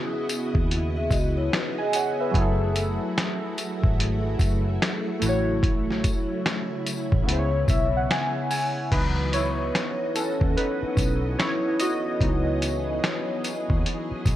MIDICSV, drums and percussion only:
0, 0, Header, 1, 2, 480
1, 0, Start_track
1, 0, Key_signature, 4, "minor"
1, 0, Tempo, 821918
1, 1368, Time_signature, 4, 2, 24, 8
1, 8385, End_track
2, 0, Start_track
2, 0, Title_t, "Drums"
2, 170, Note_on_c, 9, 54, 70
2, 172, Note_on_c, 9, 42, 59
2, 229, Note_off_c, 9, 54, 0
2, 230, Note_off_c, 9, 42, 0
2, 321, Note_on_c, 9, 36, 103
2, 379, Note_off_c, 9, 36, 0
2, 417, Note_on_c, 9, 42, 98
2, 475, Note_off_c, 9, 42, 0
2, 646, Note_on_c, 9, 36, 101
2, 647, Note_on_c, 9, 54, 47
2, 655, Note_on_c, 9, 42, 62
2, 704, Note_off_c, 9, 36, 0
2, 706, Note_off_c, 9, 54, 0
2, 714, Note_off_c, 9, 42, 0
2, 895, Note_on_c, 9, 38, 105
2, 897, Note_on_c, 9, 26, 76
2, 897, Note_on_c, 9, 42, 62
2, 954, Note_off_c, 9, 38, 0
2, 955, Note_off_c, 9, 26, 0
2, 956, Note_off_c, 9, 42, 0
2, 1127, Note_on_c, 9, 54, 61
2, 1129, Note_on_c, 9, 42, 69
2, 1186, Note_off_c, 9, 54, 0
2, 1187, Note_off_c, 9, 42, 0
2, 1368, Note_on_c, 9, 36, 123
2, 1373, Note_on_c, 9, 42, 88
2, 1427, Note_off_c, 9, 36, 0
2, 1431, Note_off_c, 9, 42, 0
2, 1609, Note_on_c, 9, 54, 45
2, 1610, Note_on_c, 9, 42, 63
2, 1668, Note_off_c, 9, 42, 0
2, 1668, Note_off_c, 9, 54, 0
2, 1855, Note_on_c, 9, 38, 104
2, 1857, Note_on_c, 9, 26, 90
2, 1861, Note_on_c, 9, 42, 75
2, 1914, Note_off_c, 9, 38, 0
2, 1915, Note_off_c, 9, 26, 0
2, 1919, Note_off_c, 9, 42, 0
2, 2089, Note_on_c, 9, 54, 63
2, 2091, Note_on_c, 9, 42, 55
2, 2148, Note_off_c, 9, 54, 0
2, 2149, Note_off_c, 9, 42, 0
2, 2240, Note_on_c, 9, 36, 103
2, 2298, Note_off_c, 9, 36, 0
2, 2336, Note_on_c, 9, 42, 90
2, 2395, Note_off_c, 9, 42, 0
2, 2565, Note_on_c, 9, 36, 94
2, 2566, Note_on_c, 9, 54, 48
2, 2575, Note_on_c, 9, 42, 61
2, 2624, Note_off_c, 9, 36, 0
2, 2624, Note_off_c, 9, 54, 0
2, 2634, Note_off_c, 9, 42, 0
2, 2816, Note_on_c, 9, 38, 108
2, 2817, Note_on_c, 9, 26, 87
2, 2818, Note_on_c, 9, 42, 75
2, 2874, Note_off_c, 9, 38, 0
2, 2876, Note_off_c, 9, 26, 0
2, 2876, Note_off_c, 9, 42, 0
2, 3047, Note_on_c, 9, 42, 67
2, 3047, Note_on_c, 9, 54, 66
2, 3105, Note_off_c, 9, 54, 0
2, 3106, Note_off_c, 9, 42, 0
2, 3287, Note_on_c, 9, 36, 115
2, 3291, Note_on_c, 9, 42, 79
2, 3345, Note_off_c, 9, 36, 0
2, 3350, Note_off_c, 9, 42, 0
2, 3448, Note_on_c, 9, 38, 36
2, 3507, Note_off_c, 9, 38, 0
2, 3528, Note_on_c, 9, 42, 72
2, 3529, Note_on_c, 9, 36, 101
2, 3530, Note_on_c, 9, 54, 43
2, 3586, Note_off_c, 9, 42, 0
2, 3587, Note_off_c, 9, 36, 0
2, 3588, Note_off_c, 9, 54, 0
2, 3772, Note_on_c, 9, 38, 116
2, 3773, Note_on_c, 9, 26, 79
2, 3777, Note_on_c, 9, 42, 81
2, 3830, Note_off_c, 9, 38, 0
2, 3832, Note_off_c, 9, 26, 0
2, 3835, Note_off_c, 9, 42, 0
2, 4009, Note_on_c, 9, 42, 64
2, 4010, Note_on_c, 9, 54, 73
2, 4068, Note_off_c, 9, 42, 0
2, 4069, Note_off_c, 9, 54, 0
2, 4159, Note_on_c, 9, 36, 104
2, 4217, Note_off_c, 9, 36, 0
2, 4255, Note_on_c, 9, 42, 103
2, 4313, Note_off_c, 9, 42, 0
2, 4485, Note_on_c, 9, 36, 108
2, 4487, Note_on_c, 9, 54, 50
2, 4494, Note_on_c, 9, 42, 65
2, 4543, Note_off_c, 9, 36, 0
2, 4546, Note_off_c, 9, 54, 0
2, 4552, Note_off_c, 9, 42, 0
2, 4734, Note_on_c, 9, 38, 109
2, 4736, Note_on_c, 9, 26, 83
2, 4736, Note_on_c, 9, 42, 75
2, 4793, Note_off_c, 9, 38, 0
2, 4794, Note_off_c, 9, 26, 0
2, 4795, Note_off_c, 9, 42, 0
2, 4968, Note_on_c, 9, 46, 48
2, 4968, Note_on_c, 9, 54, 64
2, 5026, Note_off_c, 9, 46, 0
2, 5027, Note_off_c, 9, 54, 0
2, 5207, Note_on_c, 9, 49, 95
2, 5208, Note_on_c, 9, 36, 110
2, 5212, Note_on_c, 9, 42, 77
2, 5266, Note_off_c, 9, 36, 0
2, 5266, Note_off_c, 9, 49, 0
2, 5271, Note_off_c, 9, 42, 0
2, 5448, Note_on_c, 9, 42, 70
2, 5450, Note_on_c, 9, 54, 40
2, 5507, Note_off_c, 9, 42, 0
2, 5509, Note_off_c, 9, 54, 0
2, 5694, Note_on_c, 9, 38, 90
2, 5695, Note_on_c, 9, 26, 80
2, 5699, Note_on_c, 9, 42, 75
2, 5752, Note_off_c, 9, 38, 0
2, 5754, Note_off_c, 9, 26, 0
2, 5757, Note_off_c, 9, 42, 0
2, 5930, Note_on_c, 9, 54, 63
2, 5931, Note_on_c, 9, 42, 55
2, 5989, Note_off_c, 9, 54, 0
2, 5990, Note_off_c, 9, 42, 0
2, 6080, Note_on_c, 9, 36, 102
2, 6139, Note_off_c, 9, 36, 0
2, 6176, Note_on_c, 9, 42, 87
2, 6234, Note_off_c, 9, 42, 0
2, 6406, Note_on_c, 9, 36, 95
2, 6407, Note_on_c, 9, 54, 45
2, 6415, Note_on_c, 9, 42, 67
2, 6464, Note_off_c, 9, 36, 0
2, 6465, Note_off_c, 9, 54, 0
2, 6473, Note_off_c, 9, 42, 0
2, 6655, Note_on_c, 9, 38, 99
2, 6657, Note_on_c, 9, 26, 90
2, 6657, Note_on_c, 9, 42, 65
2, 6713, Note_off_c, 9, 38, 0
2, 6715, Note_off_c, 9, 26, 0
2, 6716, Note_off_c, 9, 42, 0
2, 6889, Note_on_c, 9, 42, 65
2, 6889, Note_on_c, 9, 54, 63
2, 6947, Note_off_c, 9, 42, 0
2, 6947, Note_off_c, 9, 54, 0
2, 7128, Note_on_c, 9, 36, 114
2, 7133, Note_on_c, 9, 42, 85
2, 7187, Note_off_c, 9, 36, 0
2, 7191, Note_off_c, 9, 42, 0
2, 7371, Note_on_c, 9, 42, 62
2, 7371, Note_on_c, 9, 54, 46
2, 7429, Note_off_c, 9, 42, 0
2, 7430, Note_off_c, 9, 54, 0
2, 7614, Note_on_c, 9, 38, 103
2, 7616, Note_on_c, 9, 26, 91
2, 7619, Note_on_c, 9, 42, 76
2, 7672, Note_off_c, 9, 38, 0
2, 7674, Note_off_c, 9, 26, 0
2, 7678, Note_off_c, 9, 42, 0
2, 7850, Note_on_c, 9, 54, 60
2, 7852, Note_on_c, 9, 42, 55
2, 7909, Note_off_c, 9, 54, 0
2, 7911, Note_off_c, 9, 42, 0
2, 8000, Note_on_c, 9, 36, 92
2, 8058, Note_off_c, 9, 36, 0
2, 8095, Note_on_c, 9, 42, 93
2, 8153, Note_off_c, 9, 42, 0
2, 8325, Note_on_c, 9, 36, 101
2, 8326, Note_on_c, 9, 54, 48
2, 8334, Note_on_c, 9, 42, 62
2, 8384, Note_off_c, 9, 36, 0
2, 8384, Note_off_c, 9, 54, 0
2, 8385, Note_off_c, 9, 42, 0
2, 8385, End_track
0, 0, End_of_file